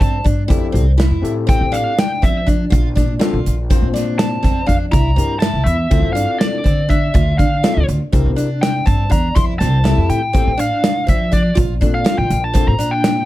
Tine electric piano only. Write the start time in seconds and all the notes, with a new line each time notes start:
0.48 C4 E4 G4 A4
1.22 C4 E4 G4 A4
3.20 C4 D4 F4 A4
3.70 C4 D4 F4 C5
5.17 D4 E4 G4 A#4
5.91 C4 E4 F4 A4
7.64 C4 D4 F4 A4
8.13 D4 E4 G4 A#4
9.85 C4 E4 G4 A4
10.34 C4 E4 G4 A4
11.81 C4 D4 F4 A4
12.56 C4 D4 F4 A4